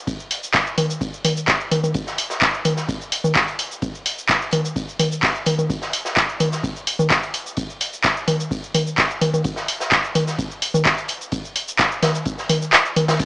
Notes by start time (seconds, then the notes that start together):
0.07 kick, closed hi-hat, cabasa
0.20 cabasa
0.31 closed hi-hat, open hi-hat
0.43 cabasa
0.54 kick, snare, clap, closed hi-hat, cabasa
0.67 cabasa
0.78 closed hi-hat, open hi-hat, low conga
0.90 cabasa
1.01 kick, closed hi-hat, cabasa
1.14 cabasa
1.25 closed hi-hat, open hi-hat, low conga
1.37 cabasa
1.47 kick, snare, clap, closed hi-hat, cabasa
1.61 cabasa
1.72 closed hi-hat, open hi-hat, low conga
1.84 low conga, cabasa
1.94 kick, closed hi-hat, cabasa
2.07 snare, cabasa
2.18 closed hi-hat, open hi-hat
2.30 snare, cabasa
2.41 kick, snare, clap, closed hi-hat, cabasa
2.54 cabasa
2.65 closed hi-hat, open hi-hat, low conga
2.77 snare, cabasa
2.89 kick, closed hi-hat, cabasa
3.01 cabasa
3.12 closed hi-hat, open hi-hat
3.24 low conga, cabasa
3.35 kick, snare, clap, closed hi-hat, cabasa
3.48 closed hi-hat, cabasa
3.59 closed hi-hat, open hi-hat
3.71 cabasa
3.82 kick, closed hi-hat, cabasa
3.95 cabasa
4.06 closed hi-hat, open hi-hat
4.18 cabasa
4.29 kick, snare, clap, closed hi-hat, cabasa
4.42 cabasa
4.51 closed hi-hat, open hi-hat, low conga
4.65 cabasa
4.76 kick, closed hi-hat, cabasa
4.89 cabasa
4.99 closed hi-hat, open hi-hat, low conga
5.12 cabasa
5.23 kick, snare, clap, closed hi-hat, cabasa
5.35 cabasa
5.46 closed hi-hat, open hi-hat, low conga
5.59 low conga, cabasa
5.70 kick, closed hi-hat, cabasa
5.82 snare, cabasa
5.93 closed hi-hat, open hi-hat
6.05 snare, cabasa
6.16 kick, snare, clap, closed hi-hat, cabasa
6.29 cabasa
6.40 closed hi-hat, open hi-hat, low conga
6.52 snare, cabasa
6.63 kick, closed hi-hat, cabasa
6.76 cabasa
6.87 closed hi-hat, open hi-hat
6.99 low conga, cabasa
7.10 kick, snare, clap, closed hi-hat, cabasa
7.23 closed hi-hat, cabasa
7.34 closed hi-hat, open hi-hat
7.46 cabasa
7.57 kick, closed hi-hat, cabasa
7.70 cabasa
7.81 closed hi-hat, open hi-hat
7.93 cabasa
8.04 kick, snare, clap, closed hi-hat, cabasa
8.17 cabasa
8.28 closed hi-hat, open hi-hat, low conga
8.40 cabasa
8.51 kick, closed hi-hat, cabasa
8.64 cabasa
8.75 closed hi-hat, open hi-hat, low conga
8.87 cabasa
8.98 kick, snare, clap, closed hi-hat, cabasa
9.11 cabasa
9.21 closed hi-hat, open hi-hat, low conga
9.34 low conga, cabasa
9.44 kick, closed hi-hat, cabasa
9.56 snare, cabasa
9.68 closed hi-hat, open hi-hat
9.80 snare, cabasa
9.92 kick, snare, clap, closed hi-hat, cabasa
10.04 cabasa
10.15 closed hi-hat, open hi-hat, low conga
10.27 snare, cabasa
10.39 kick, closed hi-hat, cabasa
10.51 cabasa
10.62 closed hi-hat, open hi-hat
10.74 low conga, cabasa
10.85 kick, snare, clap, closed hi-hat, cabasa
10.98 closed hi-hat, cabasa
11.08 closed hi-hat, open hi-hat
11.21 cabasa
11.32 kick, closed hi-hat, cabasa
11.45 cabasa
11.56 closed hi-hat, open hi-hat
11.68 cabasa
11.79 kick, snare, clap, closed hi-hat, cabasa
11.92 cabasa
12.03 snare, closed hi-hat, open hi-hat, low conga
12.15 cabasa
12.25 kick, closed hi-hat, cabasa
12.38 snare, cabasa
12.49 closed hi-hat, open hi-hat, low conga
12.62 cabasa
12.73 snare, clap, closed hi-hat, cabasa
12.85 cabasa
12.96 closed hi-hat, open hi-hat, low conga
13.08 snare, closed hi-hat, low conga, cabasa
13.19 kick, closed hi-hat, crash, cabasa